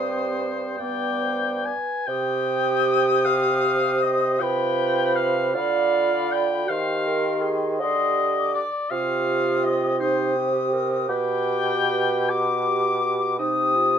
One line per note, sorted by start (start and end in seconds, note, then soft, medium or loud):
0.00 0.79 G2 medium
0.00 0.76 C4 medium
0.00 0.78 G4 medium
0.00 0.76 C5 medium
0.00 0.82 D#6 medium
0.78 1.71 G2 medium
0.78 1.71 B3 medium
0.78 1.25 D5 medium
0.78 1.66 G5 loud
0.78 1.73 D6 medium
1.23 1.65 C5 medium
1.65 2.07 B4 medium
1.65 2.08 G#5 medium
2.06 4.36 C3 medium
2.06 3.28 G4 medium
2.06 4.37 G4 medium
2.06 3.27 G5 loud
2.06 4.43 D#6 medium
3.25 4.42 C5 medium
3.25 4.01 F5 loud
4.02 4.41 D#5 loud
4.40 5.57 C3 medium
4.40 5.52 F4 medium
4.40 5.56 B4 medium
4.40 5.17 G5 loud
4.40 5.55 B5 medium
5.16 5.54 F5 loud
5.54 6.69 D3 medium
5.54 6.69 F4 medium
5.54 6.52 D5 medium
5.54 6.34 F5 loud
5.54 6.67 B5 medium
6.32 6.71 G5 loud
6.68 7.82 D#3 medium
6.68 7.79 G4 medium
6.68 7.05 C5 medium
6.68 7.53 F5 loud
6.68 7.78 C6 medium
7.06 7.44 A#4 medium
7.42 7.81 G#4 medium
7.79 8.64 D3 medium
7.79 8.62 G4 medium
7.79 8.64 G4 medium
7.79 8.49 D#5 loud
7.79 8.35 C6 medium
8.37 8.71 D6 medium
8.54 8.92 D5 loud
8.90 11.04 C3 medium
8.90 10.02 F4 medium
8.90 9.96 G4 medium
8.90 9.66 F5 loud
8.90 9.96 D#6 medium
9.64 9.99 D#5 medium
10.00 10.36 D#4 medium
10.00 11.06 G4 medium
10.00 10.34 C5 medium
10.00 11.10 D#6 medium
10.37 10.75 G4 medium
10.73 11.11 A#4 medium
11.08 13.35 B2 medium
11.08 12.27 G4 medium
11.08 12.31 B4 medium
11.08 12.31 G5 loud
11.08 12.29 D6 medium
12.29 13.36 G4 medium
12.29 13.38 G4 medium
12.29 13.38 D6 loud
12.29 13.37 D6 medium
13.38 13.99 C3 medium
13.38 13.77 D#4 medium
13.38 13.99 G4 medium
13.38 13.99 D#6 loud
13.38 13.99 D#6 medium
13.76 13.99 F4 medium